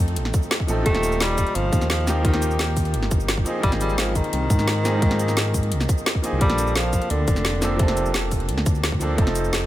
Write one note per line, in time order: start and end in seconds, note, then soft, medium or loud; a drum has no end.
0.00 0.18 F2 loud
0.00 0.67 F3 medium
0.00 0.68 A3 medium
0.00 0.69 C4 medium
0.00 0.69 D#4 medium
0.00 0.70 A4 loud
0.08 closed hi-hat soft
0.16 0.32 A1 medium
0.16 closed hi-hat medium
0.25 snare soft
0.34 kick loud
0.34 closed hi-hat medium
0.34 cabasa medium
0.42 cabasa soft
0.51 snare loud
0.51 closed hi-hat medium
0.60 kick medium
0.67 0.84 A1 loud
0.67 0.81 F3 medium
0.67 0.83 A3 medium
0.67 0.84 C4 medium
0.67 0.84 D#4 medium
0.67 0.85 A4 medium
0.67 closed hi-hat medium
0.67 cabasa medium
0.83 1.45 D#1 loud
0.83 2.04 A#2 medium
0.83 2.04 F3 medium
0.83 1.22 A3 loud
0.83 2.05 C4 medium
0.83 kick loud
0.83 closed hi-hat medium
0.89 2.07 G4 medium
0.95 snare soft
0.95 closed hi-hat soft
1.03 closed hi-hat medium
1.03 cabasa medium
1.12 cabasa soft
1.20 1.57 G3 loud
1.20 snare loud
1.20 closed hi-hat medium
1.38 kick medium
1.38 closed hi-hat medium
1.38 cabasa medium
1.47 closed hi-hat soft
1.55 1.71 G1 loud
1.55 1.90 F3 loud
1.55 closed hi-hat medium
1.73 2.96 D#2 loud
1.73 kick loud
1.73 closed hi-hat medium
1.73 cabasa medium
1.81 snare soft
1.81 cabasa soft
1.90 2.22 F3 loud
1.90 snare loud
1.90 closed hi-hat medium
2.06 2.20 F3 medium
2.06 2.21 A#3 medium
2.06 2.23 C4 medium
2.06 2.23 D#4 medium
2.06 2.23 G4 medium
2.06 snare medium
2.06 closed hi-hat medium
2.06 cabasa medium
2.21 2.57 D#3 medium
2.21 3.42 F3 medium
2.21 3.43 A#3 medium
2.21 3.44 C4 medium
2.21 kick loud
2.21 closed hi-hat medium
2.26 3.45 D#4 medium
2.26 3.45 G4 loud
2.34 snare soft
2.34 closed hi-hat soft
2.42 closed hi-hat medium
2.42 cabasa medium
2.51 cabasa soft
2.59 snare loud
2.59 closed hi-hat medium
2.77 kick medium
2.77 open hi-hat medium
2.77 cabasa medium
2.85 closed hi-hat soft
2.94 3.10 G1 medium
2.94 closed hi-hat medium
3.03 snare soft
3.11 3.45 G1 medium
3.11 kick loud
3.11 closed hi-hat medium
3.11 cabasa medium
3.20 cabasa soft
3.29 snare loud
3.29 closed hi-hat loud
3.37 kick medium
3.44 3.59 F3 medium
3.44 3.60 A#3 medium
3.44 3.61 C4 medium
3.44 3.62 D#4 medium
3.44 3.62 G#4 medium
3.44 closed hi-hat medium
3.44 cabasa medium
3.60 4.23 G#1 loud
3.60 4.81 F3 medium
3.60 3.71 G3 loud
3.60 4.82 A#3 medium
3.60 4.83 C4 medium
3.60 kick loud
3.60 closed hi-hat loud
3.65 4.83 D#4 medium
3.65 4.84 G#4 loud
3.72 snare soft
3.72 closed hi-hat soft
3.81 4.00 G3 loud
3.81 closed hi-hat medium
3.81 cabasa medium
3.89 cabasa soft
3.98 4.17 F3 loud
3.98 snare loud
3.98 closed hi-hat loud
4.15 6.06 D#3 loud
4.15 kick medium
4.15 closed hi-hat medium
4.15 cabasa medium
4.24 closed hi-hat soft
4.33 4.49 C2 loud
4.33 closed hi-hat loud
4.50 5.73 G#2 loud
4.50 kick loud
4.50 closed hi-hat medium
4.50 cabasa medium
4.59 snare soft
4.59 cabasa soft
4.68 snare loud
4.68 closed hi-hat loud
4.83 4.98 F3 medium
4.83 4.99 A#3 medium
4.83 5.00 C4 medium
4.83 5.00 D#4 medium
4.83 5.01 G#4 medium
4.83 snare medium
4.83 closed hi-hat medium
4.83 cabasa medium
4.99 6.20 F3 medium
4.99 6.21 A#3 medium
4.99 6.22 C4 medium
4.99 kick loud
4.99 closed hi-hat loud
5.04 6.22 D#4 medium
5.04 6.23 G#4 medium
5.11 snare soft
5.11 closed hi-hat soft
5.19 closed hi-hat medium
5.19 cabasa medium
5.28 snare soft
5.28 cabasa soft
5.37 snare loud
5.37 closed hi-hat medium
5.54 kick medium
5.54 open hi-hat medium
5.54 cabasa medium
5.63 closed hi-hat soft
5.72 5.87 C2 medium
5.72 closed hi-hat loud
5.80 snare soft
5.80 cabasa soft
5.89 kick loud
5.89 closed hi-hat medium
5.89 cabasa medium
5.98 cabasa soft
6.06 snare loud
6.06 closed hi-hat loud
6.15 kick medium
6.22 6.36 F3 medium
6.22 6.38 A#3 medium
6.22 6.39 C4 medium
6.22 6.39 D#4 medium
6.22 6.40 G#4 medium
6.22 closed hi-hat medium
6.22 cabasa medium
6.33 6.40 C2 loud
6.38 7.00 A#1 loud
6.38 7.59 F3 medium
6.38 6.77 G3 loud
6.38 7.59 A#3 medium
6.38 7.60 C4 medium
6.38 kick loud
6.38 closed hi-hat medium
6.43 7.61 D4 medium
6.43 7.62 A4 loud
6.50 snare soft
6.50 closed hi-hat soft
6.58 closed hi-hat medium
6.58 cabasa medium
6.67 cabasa soft
6.76 7.12 F3 loud
6.76 snare loud
6.76 closed hi-hat loud
6.93 kick medium
6.93 closed hi-hat medium
6.93 cabasa medium
7.02 closed hi-hat soft
7.10 7.26 D2 loud
7.10 7.81 D3 loud
7.10 closed hi-hat loud
7.28 8.51 F1 loud
7.28 kick loud
7.28 closed hi-hat medium
7.28 cabasa medium
7.36 snare soft
7.36 cabasa soft
7.45 snare loud
7.45 closed hi-hat loud
7.60 7.75 F3 medium
7.60 7.76 A#3 medium
7.60 7.77 C4 medium
7.60 7.78 D4 medium
7.60 7.78 A4 medium
7.60 snare medium
7.60 closed hi-hat medium
7.60 cabasa medium
7.76 8.14 C3 medium
7.76 8.97 F3 medium
7.76 8.98 A#3 medium
7.76 8.99 C4 medium
7.76 kick loud
7.76 closed hi-hat loud
7.81 9.00 D4 medium
7.81 9.00 A4 medium
7.88 snare medium
7.88 closed hi-hat soft
7.97 closed hi-hat medium
7.97 cabasa medium
8.06 cabasa soft
8.14 snare loud
8.14 closed hi-hat medium
8.31 kick medium
8.31 open hi-hat medium
8.31 cabasa medium
8.40 closed hi-hat soft
8.49 8.65 D2 medium
8.49 closed hi-hat medium
8.58 snare soft
8.66 9.17 D2 medium
8.66 kick loud
8.66 closed hi-hat medium
8.66 cabasa medium
8.75 cabasa soft
8.84 snare loud
8.84 closed hi-hat loud
8.92 kick medium
8.99 9.14 F3 medium
8.99 9.16 A#3 medium
8.99 9.16 C4 medium
8.99 9.17 D4 medium
8.99 9.17 A4 medium
8.99 closed hi-hat medium
8.99 cabasa medium
9.15 9.66 F1 loud
9.15 9.66 F3 medium
9.15 9.66 A3 medium
9.15 9.66 C4 medium
9.15 kick loud
9.15 closed hi-hat medium
9.20 9.66 D#4 medium
9.20 9.66 A4 loud
9.27 snare soft
9.27 closed hi-hat soft
9.35 closed hi-hat medium
9.35 cabasa medium
9.44 cabasa soft
9.53 snare loud
9.53 closed hi-hat medium